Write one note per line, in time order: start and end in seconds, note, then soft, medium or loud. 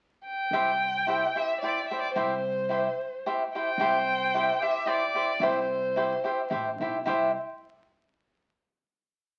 0.26 1.39 G5 medium
0.51 1.23 C2 medium
0.51 0.70 E4 medium
0.51 0.70 G4 medium
0.51 0.70 C5 medium
0.51 0.70 E5 medium
1.07 1.24 E4 soft
1.07 1.25 G4 medium
1.07 1.24 C5 medium
1.07 1.25 E5 medium
1.35 1.51 E4 soft
1.35 1.51 G4 soft
1.35 1.52 C5 soft
1.35 1.52 E5 soft
1.35 1.60 E5 medium
1.61 1.79 E4 soft
1.61 1.80 G4 medium
1.61 1.80 C5 soft
1.61 1.88 D5 medium
1.65 1.81 E5 medium
1.88 2.06 E4 soft
1.88 2.06 G4 soft
1.88 2.06 C5 soft
1.88 2.01 E5 medium
1.88 2.06 E5 soft
2.01 2.14 D5 medium
2.15 2.86 C2 medium
2.15 2.33 E4 medium
2.15 2.33 G4 medium
2.15 3.20 C5 medium
2.15 2.33 C5 medium
2.15 2.33 E5 medium
2.69 2.86 E4 soft
2.69 2.87 G4 soft
2.69 2.87 C5 medium
2.69 2.87 E5 medium
3.26 3.42 E4 medium
3.26 3.42 G4 medium
3.26 3.42 C5 medium
3.26 3.42 E5 medium
3.55 3.69 E4 soft
3.55 3.69 G4 soft
3.55 4.61 C5 medium
3.55 3.69 C5 soft
3.55 3.69 E5 medium
3.55 4.64 G5 medium
3.78 4.48 C2 medium
3.78 3.95 E4 medium
3.78 3.96 G4 medium
3.78 3.96 C5 medium
3.78 3.96 E5 medium
4.34 4.50 E4 medium
4.34 4.50 G4 medium
4.34 4.50 C5 medium
4.34 4.51 E5 medium
4.60 4.76 E4 soft
4.60 4.88 G4 medium
4.60 4.77 G4 soft
4.60 4.76 C5 medium
4.60 4.90 E5 medium
4.60 4.77 E5 soft
4.86 5.02 E4 soft
4.86 5.03 G4 soft
4.86 5.42 G4 medium
4.86 5.03 C5 medium
4.86 5.44 D5 medium
4.86 5.03 E5 medium
5.14 5.30 E4 soft
5.14 5.30 G4 soft
5.14 5.30 C5 medium
5.14 5.30 E5 medium
5.40 6.11 C2 medium
5.40 6.50 E4 soft
5.40 5.58 E4 medium
5.40 5.58 G4 medium
5.40 6.51 C5 medium
5.40 5.59 C5 medium
5.40 5.59 E5 medium
5.96 6.12 E4 medium
5.96 6.13 G4 medium
5.96 6.13 C5 medium
5.96 6.13 E5 medium
6.24 6.39 E4 soft
6.24 6.40 G4 soft
6.24 6.40 C5 soft
6.24 6.40 E5 medium
6.50 6.77 A1 medium
6.50 6.68 E4 medium
6.50 6.68 G4 medium
6.50 6.69 C5 medium
6.50 6.69 E5 medium
6.80 7.04 B1 medium
6.80 6.96 E4 medium
6.80 6.97 G4 soft
6.80 6.96 C5 medium
6.80 6.97 E5 medium
7.05 7.33 C2 medium
7.05 7.29 E4 medium
7.05 7.30 G4 medium
7.05 7.30 C5 medium
7.05 7.30 E5 medium